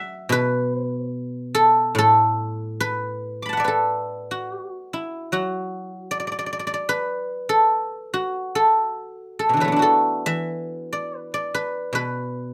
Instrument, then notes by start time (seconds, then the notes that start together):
guzheng
Already playing: F#3 D5 E5 F#5
0.29 B2 B4
0.74 C5
0.86 B4
0.98 C5
1.10 B4
1.55 A4
1.95 A2 A4
2.80 B4
3.42 B5 D6
3.49 F#5 A5
3.57 D5 E5
3.64 A4 B4
4.31 F#4
4.93 E4
5.32 F#3 F#4
6.11 D5
6.20 D5
6.27 D5
6.32 D5
6.39 D5
6.46 D5
6.53 D5
6.59 D5
6.67 D5
6.74 D5
6.89 B4
7.49 A4
8.14 F#4
8.55 A4
9.39 A4
9.49 B2
9.53 D3 E3
9.60 F#3 B4
9.64 A3 B3
9.72 D4
9.76 E4 F#4
9.82 A4
10.26 E3 E5
10.93 D5
11.19 B4
11.34 D5
11.54 B4
11.93 B2 B4